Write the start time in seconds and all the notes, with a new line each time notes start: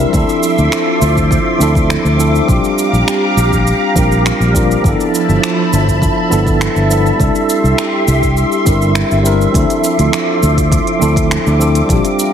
Already playing: G3 C4 D4 E4 G4 A#4 E5 C6
0.00 cabasa
0.09 D2 F3 C4 C6 D6, kick
0.14 D4 E4 A4, cabasa
0.29 cabasa
0.43 cabasa
0.58 D2, cabasa
0.72 finger snap, cabasa
1.01 D2, cabasa
1.17 kick, cabasa
1.31 kick, cabasa
1.58 D2 F3 C4 D4 E4 A4, cabasa
1.75 kick, cabasa
1.90 finger snap, cabasa
2.05 D2, cabasa
2.17 F3 C4 D4 E4 A4, cabasa
2.35 cabasa
2.45 A#1 G3 C4 D4 G4 A#5, kick
2.49 F4 G4 F5, cabasa
2.64 cabasa
2.79 cabasa
2.93 A#1, cabasa
3.08 finger snap, cabasa
3.37 A#1, cabasa
3.52 kick, cabasa
3.67 cabasa
3.94 A#1 G3 C4 D4 F4 A#4, kick, cabasa
4.12 cabasa
4.26 finger snap, cabasa
4.40 A#1, cabasa
4.53 G3 C4 D4 F4, kick, cabasa
4.57 A#4
4.71 cabasa
4.81 G1 F3 B3 D4 E5 A5 B5, kick
4.85 E4 A4, cabasa
5.00 cabasa
5.15 cabasa
5.29 G1, cabasa
5.43 finger snap, cabasa
5.73 G1, cabasa
5.88 kick, cabasa
6.02 kick, cabasa
6.29 G1 F3 B3 D4 E4 A4, cabasa
6.47 kick, cabasa
6.61 finger snap, cabasa
6.76 G1, cabasa
6.89 F3 B3 D4 E4 A4, cabasa
7.06 cabasa
7.16 C2 G3 C4 D4 C6, kick
7.20 E4 G4 A4, cabasa
7.35 cabasa
7.50 cabasa
7.64 C2, cabasa
7.78 finger snap, cabasa
8.08 C2, cabasa
8.23 kick, cabasa
8.37 cabasa
8.52 cabasa
8.65 G1 G3 C4 D4 E4 A#4, kick, cabasa
8.82 cabasa
8.95 finger snap, cabasa
9.11 G1, cabasa
9.23 G3 C4 D4 E4 A#4, cabasa
9.41 cabasa
9.50 D2 F3 C4 C6
9.54 D4 E4 A4 D6, kick, closed hi-hat, cabasa
9.70 closed hi-hat, cabasa
9.84 cabasa
9.99 D2, closed hi-hat, cabasa
10.13 finger snap, closed hi-hat, cabasa
10.43 D2, cabasa
10.57 kick, closed hi-hat, cabasa
10.72 kick, closed hi-hat, cabasa
10.87 closed hi-hat
10.99 D2 F3 C4 D4 E4 A4, cabasa
11.16 kick, closed hi-hat, cabasa
11.31 finger snap, closed hi-hat, cabasa
11.46 D2, cabasa
11.58 F3 C4 D4 E4 A4, cabasa
11.75 closed hi-hat, cabasa
11.85 A#1 G3 C4 F5 A#5
11.89 D4 F4 G4, kick, closed hi-hat, cabasa
12.05 closed hi-hat, cabasa
12.19 cabasa